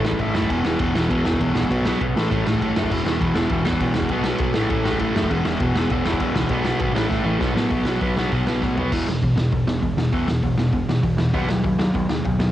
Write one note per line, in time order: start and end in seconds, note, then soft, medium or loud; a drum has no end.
0.03 0.15 A1 medium
0.03 0.20 A2 medium
0.03 0.20 E3 loud
0.03 0.19 A3 loud
0.03 snare loud
0.12 kick medium
0.19 0.30 A1 medium
0.19 0.33 A2 medium
0.19 0.34 E3 medium
0.19 0.35 A3 medium
0.19 kick loud
0.19 ride medium
0.34 0.45 F#2 medium
0.34 0.49 A2 medium
0.34 0.49 E3 medium
0.34 0.49 A3 medium
0.34 snare loud
0.42 kick medium
0.50 0.61 E1 loud
0.50 0.65 E2 medium
0.50 0.64 B2 loud
0.50 0.64 E3 loud
0.50 kick loud
0.50 ride medium
0.65 0.76 E1 medium
0.65 0.79 E2 medium
0.65 0.79 B2 medium
0.65 0.80 E3 loud
0.65 snare loud
0.79 0.90 E1 medium
0.79 0.95 E2 medium
0.79 0.95 B2 medium
0.79 0.93 E3 loud
0.79 kick loud
0.79 ride medium
0.95 1.06 E1 loud
0.95 1.08 E2 medium
0.95 1.09 B2 loud
0.95 1.09 E3 loud
0.95 snare loud
1.09 1.21 E1 medium
1.09 1.24 E2 loud
1.09 1.24 B2 loud
1.09 1.24 E3 loud
1.09 kick loud
1.09 ride medium
1.25 1.36 E1 medium
1.25 1.39 E2 medium
1.25 1.39 B2 medium
1.25 1.40 E3 loud
1.25 snare loud
1.33 kick medium
1.40 1.51 B1 medium
1.40 1.54 E2 medium
1.40 1.54 B2 loud
1.40 1.53 E3 medium
1.40 kick loud
1.40 ride medium
1.54 1.66 A#1 medium
1.54 1.69 E2 medium
1.54 1.69 B2 medium
1.54 1.68 E3 medium
1.54 snare loud
1.63 kick medium
1.70 1.92 B1 loud
1.70 1.85 B2 loud
1.70 1.85 F#3 loud
1.70 1.85 B3 loud
1.70 kick loud
1.70 ride medium
1.85 2.00 B2 medium
1.85 2.01 F#3 medium
1.85 2.01 B3 loud
1.85 snare loud
2.01 2.11 B1 medium
2.01 2.15 B2 medium
2.01 2.15 F#3 medium
2.01 2.15 B3 loud
2.01 kick loud
2.01 ride medium
2.15 2.26 A1 medium
2.15 2.31 A2 loud
2.15 2.30 E3 loud
2.15 2.30 A3 loud
2.15 snare loud
2.31 2.42 A1 medium
2.31 2.45 A2 loud
2.31 2.45 E3 loud
2.31 2.46 A3 loud
2.31 kick loud
2.31 ride medium
2.46 2.57 A1 loud
2.46 2.61 A2 medium
2.46 2.61 E3 medium
2.46 2.60 A3 medium
2.46 snare loud
2.54 kick medium
2.61 2.71 A1 medium
2.61 2.75 A2 medium
2.61 2.75 E3 medium
2.61 2.76 A3 medium
2.61 kick loud
2.61 ride medium
2.76 2.87 F#2 medium
2.76 2.89 A2 medium
2.76 2.90 E3 medium
2.76 2.90 A3 medium
2.76 snare loud
2.84 kick medium
2.90 3.01 E1 loud
2.90 3.05 E2 medium
2.90 3.04 B2 loud
2.90 3.03 E3 loud
2.90 kick loud
2.90 crash loud
3.04 3.16 E1 medium
3.04 3.19 E2 medium
3.04 3.20 B2 medium
3.04 3.20 E3 loud
3.04 snare loud
3.21 3.31 E1 medium
3.21 3.35 E2 medium
3.21 3.35 B2 medium
3.21 3.34 E3 medium
3.21 kick loud
3.21 ride medium
3.35 3.46 E1 loud
3.35 3.50 E2 medium
3.35 3.50 B2 medium
3.35 3.50 E3 medium
3.35 snare loud
3.49 3.61 E1 medium
3.49 3.65 E2 loud
3.49 3.65 B2 loud
3.49 3.64 E3 loud
3.49 kick loud
3.49 ride medium
3.65 3.76 E1 medium
3.65 3.80 E2 medium
3.65 3.80 B2 medium
3.65 3.80 E3 medium
3.65 snare loud
3.73 kick medium
3.80 3.91 B1 medium
3.80 3.95 E2 medium
3.80 3.94 B2 medium
3.80 3.94 E3 medium
3.80 kick medium
3.80 ride medium
3.94 4.06 E1 loud
3.94 4.10 E2 medium
3.94 4.09 B2 medium
3.94 4.09 E3 medium
3.94 snare loud
4.02 kick medium
4.09 4.32 B1 loud
4.09 4.25 B2 loud
4.09 4.25 F#3 loud
4.09 4.24 B3 loud
4.09 kick loud
4.09 ride medium
4.24 4.38 B2 medium
4.24 4.39 F#3 medium
4.24 4.39 B3 loud
4.24 snare loud
4.38 4.51 B1 medium
4.38 4.54 B2 medium
4.38 4.54 F#3 medium
4.38 4.54 B3 medium
4.38 kick loud
4.38 ride medium
4.54 4.66 A1 loud
4.54 4.70 A2 loud
4.54 4.69 E3 loud
4.54 4.69 A3 loud
4.54 snare loud
4.70 4.81 A1 medium
4.70 4.84 A2 loud
4.70 4.84 E3 loud
4.70 4.84 A3 loud
4.70 kick loud
4.70 ride medium
4.85 4.96 A1 medium
4.85 5.00 A2 medium
4.85 4.99 E3 medium
4.85 4.99 A3 medium
4.85 snare loud
4.93 kick medium
4.99 5.11 A1 medium
4.99 5.15 A2 medium
4.99 5.15 E3 medium
4.99 5.15 A3 medium
4.99 kick loud
4.99 ride medium
5.16 5.27 F#2 loud
5.16 5.30 A2 medium
5.16 5.30 E3 medium
5.16 5.30 A3 loud
5.16 snare loud
5.23 kick medium
5.30 5.42 E1 loud
5.30 5.45 E2 loud
5.30 5.45 B2 loud
5.30 5.45 E3 loud
5.30 kick loud
5.30 ride medium
5.45 5.56 E1 medium
5.45 5.60 E2 medium
5.45 5.60 B2 loud
5.45 5.61 E3 loud
5.45 snare loud
5.60 5.71 E1 medium
5.60 5.76 E2 medium
5.60 5.76 B2 medium
5.60 5.75 E3 loud
5.60 kick loud
5.60 ride medium
5.73 5.85 E1 loud
5.73 5.90 B2 medium
5.73 5.91 E3 loud
5.73 snare loud
5.78 5.90 E2 medium
5.90 6.01 E1 medium
5.90 6.05 E2 loud
5.90 6.05 B2 loud
5.90 6.04 E3 loud
5.90 kick loud
5.90 ride medium
6.04 6.16 E1 medium
6.04 6.19 E2 medium
6.04 6.20 B2 medium
6.04 6.20 E3 medium
6.04 snare loud
6.13 kick medium
6.20 6.31 B1 loud
6.20 6.35 E2 medium
6.20 6.34 B2 medium
6.20 6.34 E3 medium
6.20 kick loud
6.20 ride medium
6.35 6.46 C#2 loud
6.35 6.50 E2 medium
6.35 6.48 B2 loud
6.35 6.50 E3 medium
6.35 snare loud
6.43 kick medium
6.49 6.72 B1 loud
6.49 6.65 B2 medium
6.49 6.64 F#3 loud
6.49 6.64 B3 loud
6.49 kick loud
6.49 ride medium
6.65 6.78 B2 medium
6.65 6.79 F#3 medium
6.65 6.79 B3 medium
6.65 snare loud
6.80 6.91 G#1 medium
6.80 6.94 B2 medium
6.80 6.94 F#3 medium
6.80 6.94 B3 medium
6.80 kick loud
6.80 ride medium
6.94 7.06 A1 loud
6.94 7.09 A2 medium
6.94 7.09 E3 loud
6.94 7.08 A3 loud
6.94 snare loud
7.09 7.22 A1 medium
7.09 7.24 A2 medium
7.09 7.24 E3 loud
7.09 7.24 A3 loud
7.09 kick loud
7.09 snare medium
7.25 7.36 A1 loud
7.25 7.40 A2 medium
7.25 7.40 E3 medium
7.25 7.40 A3 medium
7.40 7.52 B1 medium
7.40 7.56 B2 medium
7.40 7.55 F#3 medium
7.40 7.55 B3 loud
7.40 kick loud
7.40 snare loud
7.55 7.66 A2 medium
7.55 7.69 B2 medium
7.55 7.70 F#3 medium
7.55 7.70 B3 medium
7.55 snare loud
7.70 7.85 B1 medium
7.70 7.87 B2 medium
7.70 7.86 F#3 loud
7.70 7.86 B3 loud
7.70 kick loud
7.70 open hi-hat medium
7.85 8.00 B1 medium
7.85 8.01 B2 medium
7.85 8.01 F#3 medium
7.85 8.01 B3 medium
7.85 snare loud
8.01 8.15 B1 medium
8.01 8.18 B2 medium
8.01 8.17 F#3 loud
8.01 8.16 B3 loud
8.01 kick loud
8.01 open hi-hat medium
8.17 8.30 B1 medium
8.17 8.31 B2 medium
8.17 8.31 F#3 medium
8.17 8.32 B3 loud
8.17 snare loud
8.31 8.45 B1 medium
8.31 8.47 B2 loud
8.31 8.46 F#3 loud
8.31 8.46 B3 loud
8.31 kick loud
8.31 open hi-hat medium
8.46 8.60 B1 medium
8.46 8.61 B2 medium
8.46 8.62 F#3 medium
8.46 8.62 B3 medium
8.46 snare loud
8.61 8.76 A2 medium
8.61 8.78 B2 medium
8.61 8.77 F#3 medium
8.61 8.77 B3 loud
8.61 kick loud
8.61 snare medium
8.77 8.91 B1 medium
8.77 8.92 B2 medium
8.77 8.92 F#3 medium
8.77 8.92 B3 medium
8.77 floor tom medium
8.92 9.04 E1 medium
8.92 9.06 E2 medium
8.92 9.07 B2 medium
8.92 9.07 E3 medium
8.92 kick loud
8.92 crash loud
9.05 9.18 E1 medium
9.05 9.22 E2 medium
9.05 9.22 B2 medium
9.05 snare loud
9.22 9.34 E1 medium
9.22 9.35 E2 medium
9.22 9.36 B2 medium
9.22 kick loud
9.22 open hi-hat medium
9.36 9.48 E1 medium
9.36 9.50 E2 medium
9.36 9.51 B2 medium
9.36 snare loud
9.52 9.64 E1 medium
9.52 9.66 E2 medium
9.52 9.66 B2 medium
9.52 kick loud
9.52 open hi-hat medium
9.66 9.79 E1 medium
9.66 9.80 E2 medium
9.66 9.81 B2 medium
9.66 snare loud
9.82 9.94 E1 medium
9.82 9.96 E2 medium
9.82 9.96 B2 medium
9.82 kick loud
9.82 open hi-hat medium
9.97 10.09 E1 medium
9.97 10.11 E2 medium
9.97 10.12 B2 medium
9.97 snare loud
10.13 10.25 E1 medium
10.13 10.26 E2 medium
10.13 10.27 B2 medium
10.13 10.28 E3 medium
10.13 kick loud
10.13 open hi-hat medium
10.27 10.40 E1 medium
10.27 10.41 E2 medium
10.27 10.42 B2 medium
10.27 snare loud
10.43 10.55 E1 medium
10.43 10.57 E2 medium
10.43 10.57 B2 medium
10.43 kick loud
10.43 open hi-hat medium
10.57 10.70 E1 medium
10.57 10.72 E2 medium
10.57 10.72 B2 medium
10.57 snare loud
10.73 10.85 E1 medium
10.73 10.87 E2 medium
10.73 10.87 B2 medium
10.73 kick loud
10.73 open hi-hat medium
10.86 10.99 E1 medium
10.86 11.02 E2 medium
10.86 11.03 B2 medium
10.86 snare loud
11.03 11.15 E1 medium
11.03 11.17 E2 medium
11.03 11.17 B2 medium
11.03 kick loud
11.03 open hi-hat medium
11.17 11.30 E2 medium
11.17 11.33 E2 medium
11.17 11.33 B2 medium
11.17 snare loud
11.34 11.46 D#2 medium
11.34 11.48 B2 medium
11.34 11.49 F#3 medium
11.34 11.49 B3 loud
11.34 kick loud
11.34 open hi-hat medium
11.47 11.60 D#2 medium
11.47 11.63 B2 medium
11.47 11.63 F#3 medium
11.47 snare loud
11.64 11.76 D#2 medium
11.64 11.78 B2 medium
11.64 11.78 F#3 medium
11.64 kick loud
11.64 open hi-hat medium
11.78 11.91 D#2 medium
11.78 11.93 B2 medium
11.78 11.93 F#3 medium
11.78 snare loud
11.94 12.06 D#2 medium
11.94 12.08 B2 medium
11.94 12.09 F#3 loud
11.94 kick loud
11.94 open hi-hat medium
12.09 12.21 D#2 medium
12.09 12.23 B2 medium
12.09 12.23 F#3 medium
12.09 snare loud
12.24 12.37 D#2 medium
12.24 12.38 B2 medium
12.24 12.38 F#3 medium
12.24 kick loud
12.24 open hi-hat medium
12.39 12.51 D#2 medium
12.39 12.52 B2 medium
12.39 12.52 F#3 medium
12.39 snare loud